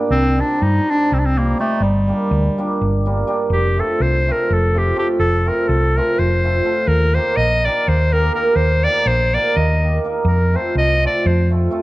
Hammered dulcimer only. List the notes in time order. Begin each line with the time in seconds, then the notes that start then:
Already playing: G3
0.38 G3 C4 D#4 G4
0.88 G3 C4 D#4 G4
1.37 G3 C4 D#4 G4
1.59 G3 C4 D#4 G4
2.08 G3 A#3 D4 G4
2.58 G3 A#3 D4 G4
3.06 G3 A#3 D4 G4
3.27 G3 A#3 D4 G4
3.77 A3 C4 F4 A4
4.28 A3 C4 F4 A4
4.75 A3 C4 F4 A4
4.95 A3 C4 F4 A4
5.46 A3 C4 F4 A4
5.97 A3 C4 F4 A4
6.43 A3 C4 F4 A4
6.64 A3 C4 F4 A4
7.14 A#3 D#4 G4 A#4
7.64 A#3 D#4 G4 A#4
8.12 A#3 D#4 G4 A#4
8.35 A#3 D#4 G4 A#4
8.83 A#3 D#4 G4 A#4
9.34 A#3 D#4 G4 A#4
9.82 A#3 D#4 G4 A#4
10.04 A#3 D#4 G4 A#4
10.53 A3 C4 F4 A4
11.04 A3 C4 F4 A4
11.50 A3 C4 F4 A4
11.71 A3 C4 F4 A4